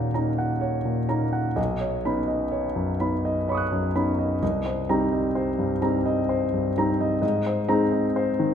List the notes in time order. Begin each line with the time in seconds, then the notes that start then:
Already playing: D#2 A#2 A#3 C#4 D#4 C#5 F#5 A#5
0.14 A#3 C#4 D#4 A#5
0.38 F#5
0.61 C#5
0.85 A#2
1.09 A#3 C#4 D#4 A#5
1.33 F#5
1.56 B1 D#5
1.80 C#5
2.05 B3 C#4 D#4 B5
2.28 D#5
2.51 C#5
2.76 F#2
3.00 B3 C#4 D#4 B5
3.25 D#5
3.48 C#5 B5 C#6
3.55 D#6 F#6
3.72 F#2
3.96 B3 C#4 D#4 B5
4.19 D#5
4.42 C2 D#5
4.66 C5
4.89 G3 C4 D#4 A#5
5.12 D#5
5.35 C5
5.59 G2
5.82 G3 C4 D#4 A#5
6.06 D#5
6.29 C5
6.54 G2
6.78 G3 C4 D#4 A#5
7.01 D#5
7.22 G#2 D#5
7.46 C5
7.68 G#3 C4 D#4 A#5
7.92 D#5
8.16 C5
8.39 D#3